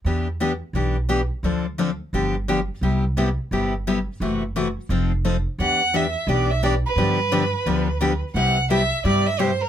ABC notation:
X:1
M:4/4
L:1/16
Q:"Swing" 1/4=174
K:Em
V:1 name="Violin"
z16 | z16 | z16 | z16 |
f4 e4 d2 e2 d2 B2- | B12- B2 z2 | f4 e4 d2 e2 c2 ^A2 |]
V:2 name="Steel-string acoustic guitar"
[E,B,DG]2 z2 [E,B,DG] z3 [E,B,DG]2 z2 [E,B,DG] z3 | [D,=F,CDA]2 z2 [D,F,CDA] z3 [D,F,B,DG]2 z2 [D,F,B,DG] z3 | [C,G,B,EG]2 z2 [C,G,B,EG] z3 [C,G,B,EG]2 z2 [C,G,B,EG] z3 | [C,E,A,EF]2 z2 [C,E,A,EF] z3 [=F,C_EA]2 z2 [F,CEA] z3 |
[E,B,DG]2 z2 [E,B,DG] z3 [E,B,DG]2 z2 [E,B,DG] z3 | [D,=F,B,DG]2 z2 [D,F,B,DG] z3 [D,F,B,DG]2 z2 [D,F,B,DG] z3 | [C,G,B,EG]2 z2 [C,G,B,EG] z3 [C,G,B,EG]2 z2 [C,G,B,EG] z3 |]
V:3 name="Upright bass" clef=bass
E,,8 B,,,8 | D,,8 G,,,8 | C,,8 G,,,8 | F,,,8 =F,,,8 |
E,,8 B,,,8 | G,,8 D,,8 | C,,8 G,,8 |]